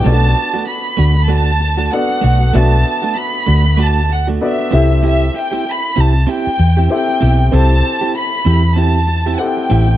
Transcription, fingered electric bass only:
X:1
M:4/4
L:1/8
Q:"Swing 16ths" 1/4=96
K:Bphr
V:1 name="Fingered electric bass" clef=bass
B,,, z2 D,,3 z B,,, | B,,, z2 D,,3 z C,,- | C,, z2 C,, z E,, z B,,, | C,, z2 E,,3 z A,,, |]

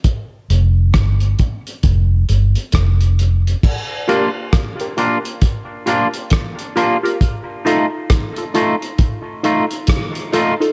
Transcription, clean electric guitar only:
X:1
M:4/4
L:1/8
Q:"Swing 16ths" 1/4=67
K:Gm
V:1 name="Clean electric guitar"
z8 | z [B,DF] z [B,DF] z [B,DF] z [B,DF] | z [A,EF] z [A,EF] z [A,EF] z [A,EF] |]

